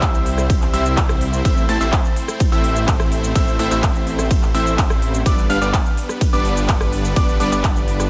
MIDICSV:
0, 0, Header, 1, 6, 480
1, 0, Start_track
1, 0, Key_signature, 0, "minor"
1, 0, Tempo, 476190
1, 1462, Time_signature, 4, 2, 24, 8
1, 8164, End_track
2, 0, Start_track
2, 0, Title_t, "Grand piano"
2, 0, Program_c, 0, 0
2, 0, Note_on_c, 0, 88, 88
2, 712, Note_off_c, 0, 88, 0
2, 741, Note_on_c, 0, 88, 91
2, 1432, Note_off_c, 0, 88, 0
2, 1460, Note_on_c, 0, 88, 96
2, 1665, Note_off_c, 0, 88, 0
2, 1702, Note_on_c, 0, 93, 106
2, 1793, Note_off_c, 0, 93, 0
2, 1821, Note_on_c, 0, 88, 92
2, 2004, Note_off_c, 0, 88, 0
2, 2541, Note_on_c, 0, 88, 100
2, 3353, Note_off_c, 0, 88, 0
2, 3382, Note_on_c, 0, 88, 97
2, 3593, Note_off_c, 0, 88, 0
2, 3621, Note_on_c, 0, 88, 91
2, 3723, Note_off_c, 0, 88, 0
2, 3741, Note_on_c, 0, 88, 86
2, 4553, Note_off_c, 0, 88, 0
2, 4581, Note_on_c, 0, 88, 96
2, 5272, Note_off_c, 0, 88, 0
2, 5300, Note_on_c, 0, 86, 91
2, 5505, Note_off_c, 0, 86, 0
2, 5540, Note_on_c, 0, 89, 108
2, 5632, Note_off_c, 0, 89, 0
2, 5660, Note_on_c, 0, 86, 91
2, 5844, Note_off_c, 0, 86, 0
2, 6380, Note_on_c, 0, 86, 103
2, 7192, Note_off_c, 0, 86, 0
2, 7220, Note_on_c, 0, 86, 94
2, 7432, Note_off_c, 0, 86, 0
2, 7460, Note_on_c, 0, 86, 93
2, 7563, Note_off_c, 0, 86, 0
2, 7580, Note_on_c, 0, 86, 93
2, 8164, Note_off_c, 0, 86, 0
2, 8164, End_track
3, 0, Start_track
3, 0, Title_t, "Supersaw synth"
3, 0, Program_c, 1, 81
3, 0, Note_on_c, 1, 55, 82
3, 0, Note_on_c, 1, 60, 74
3, 0, Note_on_c, 1, 64, 79
3, 0, Note_on_c, 1, 72, 74
3, 0, Note_on_c, 1, 76, 89
3, 713, Note_off_c, 1, 55, 0
3, 713, Note_off_c, 1, 60, 0
3, 713, Note_off_c, 1, 64, 0
3, 713, Note_off_c, 1, 72, 0
3, 713, Note_off_c, 1, 76, 0
3, 741, Note_on_c, 1, 55, 77
3, 741, Note_on_c, 1, 60, 70
3, 741, Note_on_c, 1, 64, 67
3, 741, Note_on_c, 1, 76, 87
3, 742, Note_on_c, 1, 72, 71
3, 1433, Note_off_c, 1, 55, 0
3, 1433, Note_off_c, 1, 60, 0
3, 1433, Note_off_c, 1, 64, 0
3, 1433, Note_off_c, 1, 72, 0
3, 1433, Note_off_c, 1, 76, 0
3, 1462, Note_on_c, 1, 57, 83
3, 1462, Note_on_c, 1, 60, 73
3, 1462, Note_on_c, 1, 72, 78
3, 1462, Note_on_c, 1, 76, 89
3, 1463, Note_on_c, 1, 64, 74
3, 1666, Note_off_c, 1, 57, 0
3, 1666, Note_off_c, 1, 60, 0
3, 1666, Note_off_c, 1, 64, 0
3, 1666, Note_off_c, 1, 72, 0
3, 1666, Note_off_c, 1, 76, 0
3, 1703, Note_on_c, 1, 57, 101
3, 1703, Note_on_c, 1, 60, 88
3, 1703, Note_on_c, 1, 64, 88
3, 1703, Note_on_c, 1, 72, 86
3, 1703, Note_on_c, 1, 81, 108
3, 1793, Note_off_c, 1, 57, 0
3, 1793, Note_off_c, 1, 60, 0
3, 1793, Note_off_c, 1, 64, 0
3, 1793, Note_off_c, 1, 72, 0
3, 1793, Note_off_c, 1, 81, 0
3, 1823, Note_on_c, 1, 57, 83
3, 1823, Note_on_c, 1, 60, 72
3, 1823, Note_on_c, 1, 64, 72
3, 1823, Note_on_c, 1, 72, 76
3, 1823, Note_on_c, 1, 76, 89
3, 2005, Note_off_c, 1, 57, 0
3, 2005, Note_off_c, 1, 60, 0
3, 2005, Note_off_c, 1, 64, 0
3, 2005, Note_off_c, 1, 72, 0
3, 2005, Note_off_c, 1, 76, 0
3, 2543, Note_on_c, 1, 57, 93
3, 2543, Note_on_c, 1, 60, 88
3, 2543, Note_on_c, 1, 64, 87
3, 2543, Note_on_c, 1, 72, 86
3, 2543, Note_on_c, 1, 76, 103
3, 3353, Note_off_c, 1, 57, 0
3, 3353, Note_off_c, 1, 64, 0
3, 3353, Note_off_c, 1, 72, 0
3, 3353, Note_off_c, 1, 76, 0
3, 3354, Note_off_c, 1, 60, 0
3, 3383, Note_on_c, 1, 57, 88
3, 3383, Note_on_c, 1, 60, 81
3, 3383, Note_on_c, 1, 64, 75
3, 3383, Note_on_c, 1, 72, 79
3, 3383, Note_on_c, 1, 76, 100
3, 3594, Note_off_c, 1, 57, 0
3, 3594, Note_off_c, 1, 60, 0
3, 3594, Note_off_c, 1, 64, 0
3, 3594, Note_off_c, 1, 72, 0
3, 3594, Note_off_c, 1, 76, 0
3, 3622, Note_on_c, 1, 57, 83
3, 3622, Note_on_c, 1, 64, 74
3, 3622, Note_on_c, 1, 72, 73
3, 3622, Note_on_c, 1, 76, 93
3, 3623, Note_on_c, 1, 60, 76
3, 3724, Note_off_c, 1, 57, 0
3, 3724, Note_off_c, 1, 60, 0
3, 3724, Note_off_c, 1, 64, 0
3, 3724, Note_off_c, 1, 72, 0
3, 3724, Note_off_c, 1, 76, 0
3, 3742, Note_on_c, 1, 57, 80
3, 3742, Note_on_c, 1, 60, 75
3, 3742, Note_on_c, 1, 64, 75
3, 3742, Note_on_c, 1, 72, 73
3, 3742, Note_on_c, 1, 76, 90
3, 4553, Note_off_c, 1, 57, 0
3, 4553, Note_off_c, 1, 60, 0
3, 4553, Note_off_c, 1, 64, 0
3, 4553, Note_off_c, 1, 72, 0
3, 4553, Note_off_c, 1, 76, 0
3, 4582, Note_on_c, 1, 57, 78
3, 4582, Note_on_c, 1, 60, 69
3, 4582, Note_on_c, 1, 64, 69
3, 4582, Note_on_c, 1, 72, 72
3, 4582, Note_on_c, 1, 76, 81
3, 5273, Note_off_c, 1, 57, 0
3, 5273, Note_off_c, 1, 60, 0
3, 5273, Note_off_c, 1, 64, 0
3, 5273, Note_off_c, 1, 72, 0
3, 5273, Note_off_c, 1, 76, 0
3, 5301, Note_on_c, 1, 59, 77
3, 5301, Note_on_c, 1, 62, 74
3, 5301, Note_on_c, 1, 74, 92
3, 5302, Note_on_c, 1, 55, 85
3, 5302, Note_on_c, 1, 71, 77
3, 5505, Note_off_c, 1, 59, 0
3, 5505, Note_off_c, 1, 62, 0
3, 5505, Note_off_c, 1, 74, 0
3, 5506, Note_off_c, 1, 55, 0
3, 5506, Note_off_c, 1, 71, 0
3, 5542, Note_on_c, 1, 55, 94
3, 5542, Note_on_c, 1, 59, 92
3, 5542, Note_on_c, 1, 62, 95
3, 5542, Note_on_c, 1, 71, 94
3, 5542, Note_on_c, 1, 77, 110
3, 5633, Note_off_c, 1, 55, 0
3, 5633, Note_off_c, 1, 59, 0
3, 5633, Note_off_c, 1, 62, 0
3, 5633, Note_off_c, 1, 71, 0
3, 5633, Note_off_c, 1, 77, 0
3, 5661, Note_on_c, 1, 55, 81
3, 5661, Note_on_c, 1, 59, 76
3, 5661, Note_on_c, 1, 62, 74
3, 5661, Note_on_c, 1, 71, 74
3, 5661, Note_on_c, 1, 74, 85
3, 5844, Note_off_c, 1, 55, 0
3, 5844, Note_off_c, 1, 59, 0
3, 5844, Note_off_c, 1, 62, 0
3, 5844, Note_off_c, 1, 71, 0
3, 5844, Note_off_c, 1, 74, 0
3, 6381, Note_on_c, 1, 55, 94
3, 6381, Note_on_c, 1, 59, 89
3, 6381, Note_on_c, 1, 62, 85
3, 6381, Note_on_c, 1, 71, 90
3, 6381, Note_on_c, 1, 74, 109
3, 7192, Note_off_c, 1, 55, 0
3, 7192, Note_off_c, 1, 59, 0
3, 7192, Note_off_c, 1, 62, 0
3, 7192, Note_off_c, 1, 71, 0
3, 7192, Note_off_c, 1, 74, 0
3, 7221, Note_on_c, 1, 55, 87
3, 7221, Note_on_c, 1, 59, 77
3, 7221, Note_on_c, 1, 71, 78
3, 7221, Note_on_c, 1, 74, 96
3, 7222, Note_on_c, 1, 62, 78
3, 7433, Note_off_c, 1, 55, 0
3, 7433, Note_off_c, 1, 59, 0
3, 7433, Note_off_c, 1, 62, 0
3, 7433, Note_off_c, 1, 71, 0
3, 7433, Note_off_c, 1, 74, 0
3, 7461, Note_on_c, 1, 55, 82
3, 7461, Note_on_c, 1, 59, 78
3, 7461, Note_on_c, 1, 62, 77
3, 7461, Note_on_c, 1, 71, 77
3, 7461, Note_on_c, 1, 74, 97
3, 7563, Note_off_c, 1, 55, 0
3, 7563, Note_off_c, 1, 59, 0
3, 7563, Note_off_c, 1, 62, 0
3, 7563, Note_off_c, 1, 71, 0
3, 7563, Note_off_c, 1, 74, 0
3, 7582, Note_on_c, 1, 55, 81
3, 7582, Note_on_c, 1, 59, 76
3, 7582, Note_on_c, 1, 62, 76
3, 7582, Note_on_c, 1, 71, 74
3, 7582, Note_on_c, 1, 74, 92
3, 8164, Note_off_c, 1, 55, 0
3, 8164, Note_off_c, 1, 59, 0
3, 8164, Note_off_c, 1, 62, 0
3, 8164, Note_off_c, 1, 71, 0
3, 8164, Note_off_c, 1, 74, 0
3, 8164, End_track
4, 0, Start_track
4, 0, Title_t, "Supersaw synth"
4, 0, Program_c, 2, 81
4, 0, Note_on_c, 2, 55, 84
4, 0, Note_on_c, 2, 60, 77
4, 0, Note_on_c, 2, 64, 80
4, 0, Note_on_c, 2, 72, 95
4, 1421, Note_off_c, 2, 55, 0
4, 1460, Note_on_c, 2, 57, 86
4, 5262, Note_off_c, 2, 57, 0
4, 5262, Note_off_c, 2, 60, 0
4, 5262, Note_off_c, 2, 72, 0
4, 5263, Note_off_c, 2, 64, 0
4, 5299, Note_on_c, 2, 55, 85
4, 5300, Note_on_c, 2, 59, 81
4, 5300, Note_on_c, 2, 62, 83
4, 5300, Note_on_c, 2, 71, 98
4, 8164, Note_off_c, 2, 55, 0
4, 8164, Note_off_c, 2, 59, 0
4, 8164, Note_off_c, 2, 62, 0
4, 8164, Note_off_c, 2, 71, 0
4, 8164, End_track
5, 0, Start_track
5, 0, Title_t, "Detuned saw bass"
5, 0, Program_c, 3, 39
5, 0, Note_on_c, 3, 36, 97
5, 717, Note_off_c, 3, 36, 0
5, 741, Note_on_c, 3, 36, 96
5, 1437, Note_off_c, 3, 36, 0
5, 1462, Note_on_c, 3, 33, 97
5, 1678, Note_off_c, 3, 33, 0
5, 1700, Note_on_c, 3, 33, 100
5, 1797, Note_off_c, 3, 33, 0
5, 1821, Note_on_c, 3, 33, 95
5, 1980, Note_off_c, 3, 33, 0
5, 2541, Note_on_c, 3, 33, 95
5, 3357, Note_off_c, 3, 33, 0
5, 3381, Note_on_c, 3, 33, 93
5, 3597, Note_off_c, 3, 33, 0
5, 3621, Note_on_c, 3, 33, 98
5, 3717, Note_off_c, 3, 33, 0
5, 3742, Note_on_c, 3, 33, 97
5, 4558, Note_off_c, 3, 33, 0
5, 4582, Note_on_c, 3, 33, 97
5, 5278, Note_off_c, 3, 33, 0
5, 5301, Note_on_c, 3, 31, 98
5, 5517, Note_off_c, 3, 31, 0
5, 5541, Note_on_c, 3, 31, 95
5, 5637, Note_off_c, 3, 31, 0
5, 5660, Note_on_c, 3, 31, 97
5, 5820, Note_off_c, 3, 31, 0
5, 6381, Note_on_c, 3, 31, 94
5, 7197, Note_off_c, 3, 31, 0
5, 7222, Note_on_c, 3, 31, 93
5, 7438, Note_off_c, 3, 31, 0
5, 7461, Note_on_c, 3, 31, 96
5, 7557, Note_off_c, 3, 31, 0
5, 7580, Note_on_c, 3, 31, 95
5, 8164, Note_off_c, 3, 31, 0
5, 8164, End_track
6, 0, Start_track
6, 0, Title_t, "Drums"
6, 21, Note_on_c, 9, 36, 127
6, 22, Note_on_c, 9, 39, 114
6, 22, Note_on_c, 9, 51, 62
6, 27, Note_on_c, 9, 82, 52
6, 122, Note_off_c, 9, 36, 0
6, 122, Note_off_c, 9, 39, 0
6, 123, Note_off_c, 9, 51, 0
6, 127, Note_off_c, 9, 82, 0
6, 147, Note_on_c, 9, 82, 34
6, 248, Note_off_c, 9, 82, 0
6, 262, Note_on_c, 9, 46, 102
6, 363, Note_off_c, 9, 46, 0
6, 382, Note_on_c, 9, 37, 63
6, 386, Note_on_c, 9, 82, 64
6, 483, Note_off_c, 9, 37, 0
6, 487, Note_off_c, 9, 82, 0
6, 501, Note_on_c, 9, 36, 127
6, 502, Note_on_c, 9, 51, 70
6, 506, Note_on_c, 9, 82, 57
6, 602, Note_off_c, 9, 36, 0
6, 603, Note_off_c, 9, 51, 0
6, 607, Note_off_c, 9, 82, 0
6, 621, Note_on_c, 9, 39, 35
6, 626, Note_on_c, 9, 82, 33
6, 722, Note_off_c, 9, 39, 0
6, 727, Note_off_c, 9, 82, 0
6, 741, Note_on_c, 9, 46, 110
6, 842, Note_off_c, 9, 46, 0
6, 865, Note_on_c, 9, 82, 61
6, 966, Note_off_c, 9, 82, 0
6, 981, Note_on_c, 9, 39, 125
6, 981, Note_on_c, 9, 51, 68
6, 982, Note_on_c, 9, 36, 121
6, 986, Note_on_c, 9, 82, 55
6, 1082, Note_off_c, 9, 39, 0
6, 1082, Note_off_c, 9, 51, 0
6, 1083, Note_off_c, 9, 36, 0
6, 1086, Note_off_c, 9, 82, 0
6, 1101, Note_on_c, 9, 37, 84
6, 1105, Note_on_c, 9, 82, 34
6, 1202, Note_off_c, 9, 37, 0
6, 1206, Note_off_c, 9, 82, 0
6, 1221, Note_on_c, 9, 46, 96
6, 1322, Note_off_c, 9, 46, 0
6, 1345, Note_on_c, 9, 82, 65
6, 1446, Note_off_c, 9, 82, 0
6, 1462, Note_on_c, 9, 36, 123
6, 1462, Note_on_c, 9, 51, 71
6, 1466, Note_on_c, 9, 82, 56
6, 1563, Note_off_c, 9, 36, 0
6, 1563, Note_off_c, 9, 51, 0
6, 1567, Note_off_c, 9, 82, 0
6, 1586, Note_on_c, 9, 82, 33
6, 1687, Note_off_c, 9, 82, 0
6, 1702, Note_on_c, 9, 46, 107
6, 1803, Note_off_c, 9, 46, 0
6, 1825, Note_on_c, 9, 82, 63
6, 1926, Note_off_c, 9, 82, 0
6, 1941, Note_on_c, 9, 39, 115
6, 1942, Note_on_c, 9, 36, 124
6, 1942, Note_on_c, 9, 51, 67
6, 1946, Note_on_c, 9, 82, 50
6, 2042, Note_off_c, 9, 39, 0
6, 2042, Note_off_c, 9, 51, 0
6, 2043, Note_off_c, 9, 36, 0
6, 2047, Note_off_c, 9, 82, 0
6, 2066, Note_on_c, 9, 82, 34
6, 2166, Note_off_c, 9, 82, 0
6, 2181, Note_on_c, 9, 46, 97
6, 2282, Note_off_c, 9, 46, 0
6, 2301, Note_on_c, 9, 37, 71
6, 2305, Note_on_c, 9, 82, 64
6, 2402, Note_off_c, 9, 37, 0
6, 2406, Note_off_c, 9, 82, 0
6, 2421, Note_on_c, 9, 51, 71
6, 2422, Note_on_c, 9, 36, 127
6, 2425, Note_on_c, 9, 82, 54
6, 2522, Note_off_c, 9, 51, 0
6, 2523, Note_off_c, 9, 36, 0
6, 2526, Note_off_c, 9, 82, 0
6, 2546, Note_on_c, 9, 82, 33
6, 2647, Note_off_c, 9, 82, 0
6, 2661, Note_on_c, 9, 46, 107
6, 2761, Note_off_c, 9, 46, 0
6, 2785, Note_on_c, 9, 82, 63
6, 2886, Note_off_c, 9, 82, 0
6, 2901, Note_on_c, 9, 39, 113
6, 2901, Note_on_c, 9, 51, 72
6, 2902, Note_on_c, 9, 36, 117
6, 2905, Note_on_c, 9, 82, 58
6, 3001, Note_off_c, 9, 39, 0
6, 3002, Note_off_c, 9, 51, 0
6, 3003, Note_off_c, 9, 36, 0
6, 3006, Note_off_c, 9, 82, 0
6, 3022, Note_on_c, 9, 37, 85
6, 3026, Note_on_c, 9, 82, 33
6, 3123, Note_off_c, 9, 37, 0
6, 3127, Note_off_c, 9, 82, 0
6, 3142, Note_on_c, 9, 46, 97
6, 3243, Note_off_c, 9, 46, 0
6, 3267, Note_on_c, 9, 82, 65
6, 3367, Note_off_c, 9, 82, 0
6, 3382, Note_on_c, 9, 36, 120
6, 3382, Note_on_c, 9, 51, 75
6, 3386, Note_on_c, 9, 82, 56
6, 3482, Note_off_c, 9, 36, 0
6, 3483, Note_off_c, 9, 51, 0
6, 3487, Note_off_c, 9, 82, 0
6, 3507, Note_on_c, 9, 82, 34
6, 3608, Note_off_c, 9, 82, 0
6, 3621, Note_on_c, 9, 46, 110
6, 3722, Note_off_c, 9, 46, 0
6, 3741, Note_on_c, 9, 39, 35
6, 3746, Note_on_c, 9, 82, 68
6, 3842, Note_off_c, 9, 39, 0
6, 3846, Note_off_c, 9, 82, 0
6, 3860, Note_on_c, 9, 39, 108
6, 3861, Note_on_c, 9, 51, 68
6, 3862, Note_on_c, 9, 36, 118
6, 3865, Note_on_c, 9, 82, 54
6, 3961, Note_off_c, 9, 39, 0
6, 3962, Note_off_c, 9, 36, 0
6, 3962, Note_off_c, 9, 51, 0
6, 3966, Note_off_c, 9, 82, 0
6, 3986, Note_on_c, 9, 82, 35
6, 4086, Note_off_c, 9, 82, 0
6, 4101, Note_on_c, 9, 46, 90
6, 4202, Note_off_c, 9, 46, 0
6, 4221, Note_on_c, 9, 37, 67
6, 4225, Note_on_c, 9, 82, 65
6, 4321, Note_off_c, 9, 37, 0
6, 4326, Note_off_c, 9, 82, 0
6, 4341, Note_on_c, 9, 36, 122
6, 4342, Note_on_c, 9, 51, 74
6, 4346, Note_on_c, 9, 82, 58
6, 4442, Note_off_c, 9, 36, 0
6, 4442, Note_off_c, 9, 51, 0
6, 4447, Note_off_c, 9, 82, 0
6, 4461, Note_on_c, 9, 39, 36
6, 4466, Note_on_c, 9, 82, 34
6, 4562, Note_off_c, 9, 39, 0
6, 4567, Note_off_c, 9, 82, 0
6, 4582, Note_on_c, 9, 46, 102
6, 4682, Note_off_c, 9, 46, 0
6, 4706, Note_on_c, 9, 82, 64
6, 4807, Note_off_c, 9, 82, 0
6, 4821, Note_on_c, 9, 36, 110
6, 4821, Note_on_c, 9, 39, 123
6, 4822, Note_on_c, 9, 51, 73
6, 4826, Note_on_c, 9, 82, 57
6, 4922, Note_off_c, 9, 36, 0
6, 4922, Note_off_c, 9, 39, 0
6, 4923, Note_off_c, 9, 51, 0
6, 4927, Note_off_c, 9, 82, 0
6, 4942, Note_on_c, 9, 37, 90
6, 4946, Note_on_c, 9, 82, 34
6, 5043, Note_off_c, 9, 37, 0
6, 5047, Note_off_c, 9, 82, 0
6, 5062, Note_on_c, 9, 46, 89
6, 5163, Note_off_c, 9, 46, 0
6, 5186, Note_on_c, 9, 82, 69
6, 5287, Note_off_c, 9, 82, 0
6, 5301, Note_on_c, 9, 36, 117
6, 5302, Note_on_c, 9, 51, 74
6, 5306, Note_on_c, 9, 82, 60
6, 5402, Note_off_c, 9, 36, 0
6, 5403, Note_off_c, 9, 51, 0
6, 5407, Note_off_c, 9, 82, 0
6, 5426, Note_on_c, 9, 82, 35
6, 5527, Note_off_c, 9, 82, 0
6, 5542, Note_on_c, 9, 46, 103
6, 5643, Note_off_c, 9, 46, 0
6, 5666, Note_on_c, 9, 82, 67
6, 5767, Note_off_c, 9, 82, 0
6, 5781, Note_on_c, 9, 36, 116
6, 5782, Note_on_c, 9, 39, 111
6, 5783, Note_on_c, 9, 51, 72
6, 5787, Note_on_c, 9, 82, 58
6, 5882, Note_off_c, 9, 36, 0
6, 5883, Note_off_c, 9, 39, 0
6, 5884, Note_off_c, 9, 51, 0
6, 5888, Note_off_c, 9, 82, 0
6, 5906, Note_on_c, 9, 82, 37
6, 6007, Note_off_c, 9, 82, 0
6, 6022, Note_on_c, 9, 46, 91
6, 6122, Note_off_c, 9, 46, 0
6, 6142, Note_on_c, 9, 37, 63
6, 6146, Note_on_c, 9, 82, 67
6, 6242, Note_off_c, 9, 37, 0
6, 6247, Note_off_c, 9, 82, 0
6, 6261, Note_on_c, 9, 36, 119
6, 6261, Note_on_c, 9, 51, 77
6, 6265, Note_on_c, 9, 82, 63
6, 6362, Note_off_c, 9, 36, 0
6, 6362, Note_off_c, 9, 51, 0
6, 6366, Note_off_c, 9, 82, 0
6, 6385, Note_on_c, 9, 82, 36
6, 6486, Note_off_c, 9, 82, 0
6, 6500, Note_on_c, 9, 46, 99
6, 6601, Note_off_c, 9, 46, 0
6, 6625, Note_on_c, 9, 82, 67
6, 6726, Note_off_c, 9, 82, 0
6, 6740, Note_on_c, 9, 39, 118
6, 6740, Note_on_c, 9, 51, 74
6, 6741, Note_on_c, 9, 36, 106
6, 6745, Note_on_c, 9, 82, 60
6, 6841, Note_off_c, 9, 39, 0
6, 6841, Note_off_c, 9, 51, 0
6, 6842, Note_off_c, 9, 36, 0
6, 6845, Note_off_c, 9, 82, 0
6, 6861, Note_on_c, 9, 37, 81
6, 6865, Note_on_c, 9, 82, 37
6, 6962, Note_off_c, 9, 37, 0
6, 6966, Note_off_c, 9, 82, 0
6, 6981, Note_on_c, 9, 46, 86
6, 7081, Note_off_c, 9, 46, 0
6, 7105, Note_on_c, 9, 82, 73
6, 7206, Note_off_c, 9, 82, 0
6, 7221, Note_on_c, 9, 36, 115
6, 7221, Note_on_c, 9, 51, 71
6, 7225, Note_on_c, 9, 82, 59
6, 7321, Note_off_c, 9, 51, 0
6, 7322, Note_off_c, 9, 36, 0
6, 7326, Note_off_c, 9, 82, 0
6, 7345, Note_on_c, 9, 82, 36
6, 7446, Note_off_c, 9, 82, 0
6, 7460, Note_on_c, 9, 46, 105
6, 7561, Note_off_c, 9, 46, 0
6, 7580, Note_on_c, 9, 39, 39
6, 7585, Note_on_c, 9, 82, 72
6, 7681, Note_off_c, 9, 39, 0
6, 7686, Note_off_c, 9, 82, 0
6, 7700, Note_on_c, 9, 39, 122
6, 7701, Note_on_c, 9, 36, 123
6, 7701, Note_on_c, 9, 51, 66
6, 7705, Note_on_c, 9, 82, 58
6, 7801, Note_off_c, 9, 39, 0
6, 7801, Note_off_c, 9, 51, 0
6, 7802, Note_off_c, 9, 36, 0
6, 7806, Note_off_c, 9, 82, 0
6, 7825, Note_on_c, 9, 82, 38
6, 7926, Note_off_c, 9, 82, 0
6, 7941, Note_on_c, 9, 46, 92
6, 8041, Note_off_c, 9, 46, 0
6, 8061, Note_on_c, 9, 37, 63
6, 8065, Note_on_c, 9, 82, 72
6, 8162, Note_off_c, 9, 37, 0
6, 8164, Note_off_c, 9, 82, 0
6, 8164, End_track
0, 0, End_of_file